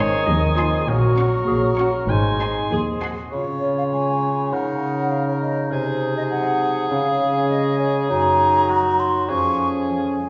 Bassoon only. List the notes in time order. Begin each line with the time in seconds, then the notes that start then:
Already playing: D#3
0.88 F#3
2.10 G#3
3.32 C#3
5.72 C3
6.91 C#3
8.10 F#3
9.29 F3